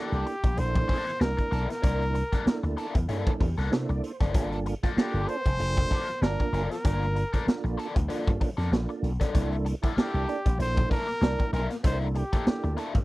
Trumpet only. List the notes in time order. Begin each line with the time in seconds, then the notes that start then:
Already playing: G4
0.59 C5
1.21 A#4
1.71 A#4
4.97 G4
5.28 C5
6.22 A#4
6.71 A#4
9.97 G4
10.60 C5
10.91 A#4
11.53 A#4
11.85 C5
12.16 G4